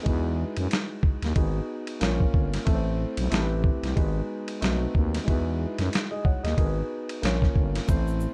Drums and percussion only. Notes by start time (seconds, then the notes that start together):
0.06 kick, ride
0.57 ride
0.71 snare, hi-hat pedal, ride
1.03 kick
1.22 snare, ride
1.36 kick, ride
1.87 ride
2.01 snare, hi-hat pedal, ride
2.20 kick
2.34 kick
2.54 snare, ride
2.67 kick, ride
3.17 ride
3.32 snare, hi-hat pedal, ride
3.64 kick
3.84 snare, ride
3.97 kick, ride
4.48 ride
4.62 snare, hi-hat pedal, ride
4.95 kick
5.15 snare, ride
5.28 kick, ride
5.79 snare, ride
5.93 snare, hi-hat pedal, ride
6.25 kick
6.45 snare, ride
6.58 kick, ride
7.09 ride
7.23 snare, hi-hat pedal, ride
7.42 kick, snare
7.56 kick
7.75 snare, ride
7.88 kick, ride, shaker
8.08 shaker
8.20 shaker